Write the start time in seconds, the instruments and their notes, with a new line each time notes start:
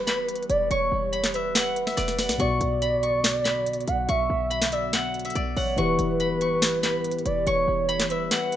Already playing: 808-style bass E1, ambient pad E3 G3 B3 G4, soft synth lead B4, guzheng E5 F#5 C#6
0.07 guzheng B5, snare, clap
0.29 closed hi-hat
0.36 closed hi-hat
0.43 closed hi-hat
0.50 808-style bass E1, soft synth lead D5, closed hi-hat
0.71 808-style bass E1, soft synth lead C#5, guzheng C#6, closed hi-hat
0.92 808-style bass E1
1.13 guzheng B5, closed hi-hat
1.24 snare, clap
1.34 soft synth lead B4, guzheng E5, closed hi-hat
1.55 guzheng F#5, snare, clap, closed hi-hat
1.76 closed hi-hat
1.87 guzheng E5, snare
1.97 808-style bass E1, guzheng D5, snare, closed hi-hat
2.08 snare
2.19 guzheng F#5, snare, open hi-hat
2.29 808-style bass B1, snare
2.38 808-style bass B1, tine electric piano B2 B3 F#4 D5, ambient pad D3 F#3 B3 F#4, soft synth lead D5, guzheng C#6, closed hi-hat
2.61 808-style bass B1, closed hi-hat
2.82 guzheng B5, closed hi-hat
3.03 guzheng C#6, closed hi-hat
3.24 snare, clap, closed hi-hat
3.44 guzheng B5, snare, clap
3.66 closed hi-hat
3.73 closed hi-hat
3.81 closed hi-hat
3.88 808-style bass B1, soft synth lead F#5, closed hi-hat
4.09 808-style bass B1, soft synth lead E5, guzheng C#6, closed hi-hat
4.30 808-style bass B1
4.50 guzheng B5, closed hi-hat
4.62 snare, clap
4.72 soft synth lead D5, guzheng E5, closed hi-hat
4.93 guzheng F#5, snare, clap, closed hi-hat
5.14 closed hi-hat
5.20 closed hi-hat
5.25 guzheng E5, closed hi-hat
5.30 closed hi-hat
5.35 808-style bass B1, guzheng D5, closed hi-hat
5.57 808-style bass A1, soft synth lead C#5, guzheng F#5, open hi-hat
5.77 808-style bass E1, tine electric piano E3 E4 G4 B4, ambient pad E3 G3 G4, soft synth lead B4, guzheng C#6, closed hi-hat
5.99 808-style bass E1, closed hi-hat
6.20 guzheng B5, closed hi-hat
6.41 guzheng C#6, closed hi-hat
6.62 snare, clap, closed hi-hat
6.83 guzheng B5, snare, clap
7.04 closed hi-hat
7.12 closed hi-hat
7.19 closed hi-hat
7.26 808-style bass E1, soft synth lead D5, closed hi-hat
7.47 808-style bass E1, soft synth lead C#5, guzheng C#6, closed hi-hat
7.68 808-style bass E1
7.89 guzheng B5, closed hi-hat
8.00 snare, clap
8.10 soft synth lead B4, guzheng E5, closed hi-hat
8.31 guzheng F#5, snare, clap, closed hi-hat
8.52 closed hi-hat